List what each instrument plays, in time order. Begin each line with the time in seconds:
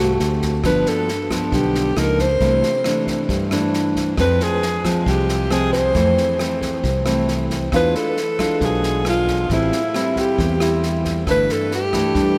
Already playing: fingered electric bass C2, nylon-string guitar G#2, alto saxophone G4
0.00 nylon-string guitar A3 C4 F#4
0.20 fingered electric bass D2, snare
0.42 kick, snare
0.64 fingered electric bass G1, nylon-string guitar G2 F3 B3 D4, alto saxophone B4, kick, cross-stick, snare
0.86 alto saxophone A4, snare
1.08 snare
1.30 nylon-string guitar F3 B3 D4, kick, cross-stick, snare
1.52 fingered electric bass B1, nylon-string guitar D3, alto saxophone G4, kick, snare
1.75 snare
1.96 fingered electric bass C#2, nylon-string guitar F3 A#3 D#4, alto saxophone A#4, cross-stick, snare
2.19 alto saxophone C5, kick, snare
2.40 fingered electric bass C2, nylon-string guitar C3 E3 A3 D4, kick, snare
2.63 snare
2.84 nylon-string guitar E3 A3 D4, cross-stick, snare
3.07 kick, snare
3.29 fingered electric bass G2, nylon-string guitar G2, kick, snare
3.51 nylon-string guitar E3 A3 D4, cross-stick, snare
3.73 snare
3.96 kick, snare
4.17 fingered electric bass F2, nylon-string guitar F2 F3 G#3 C4, alto saxophone B4, kick, cross-stick, snare
4.40 alto saxophone G#4, snare
4.62 snare
4.84 nylon-string guitar F3 G#3 C4, kick, cross-stick, snare
5.06 fingered electric bass C2, nylon-string guitar C3, alto saxophone G4, kick, snare
5.28 snare
5.50 nylon-string guitar F3 G#3 C4, alto saxophone G#4, cross-stick, snare
5.73 alto saxophone C5, kick, snare
5.94 nylon-string guitar F2 E3 A3 C4, fingered electric bass F2, kick, snare
6.17 snare
6.39 nylon-string guitar E3 A3 C4, cross-stick, snare
6.62 kick, snare
6.83 fingered electric bass C2, nylon-string guitar C3, kick, snare
7.05 nylon-string guitar E3 A3 C4, cross-stick, snare
7.28 snare
7.50 kick, snare
7.72 fingered electric bass E2, nylon-string guitar E3 G#3 D4 F4, alto saxophone B4, kick, cross-stick, snare
7.95 alto saxophone A4, snare
8.17 snare
8.39 nylon-string guitar G#3 D4 F4, kick, cross-stick, snare
8.61 fingered electric bass B1, nylon-string guitar B2, alto saxophone G#4, kick, snare
8.83 snare
9.05 nylon-string guitar G#3 D4 F4, alto saxophone F4, cross-stick, snare
9.28 kick, snare
9.50 fingered electric bass A1, nylon-string guitar A2 G3 C4 E4, alto saxophone E4, kick, snare
9.72 snare
9.94 nylon-string guitar G3 C4 E4, cross-stick, snare
10.16 alto saxophone G4, kick, snare
10.38 fingered electric bass E2, nylon-string guitar E3, kick, snare
10.60 nylon-string guitar G3 C4 E4, cross-stick, snare
10.83 snare
11.05 kick, snare
11.27 fingered electric bass G1, nylon-string guitar G2 E3 A3 D4, alto saxophone B4, kick, cross-stick, snare
11.49 alto saxophone A4, snare
11.71 alto saxophone G4, snare
11.93 nylon-string guitar E3 A3 D4, kick, cross-stick, snare
12.15 fingered electric bass G2, nylon-string guitar G2, kick, snare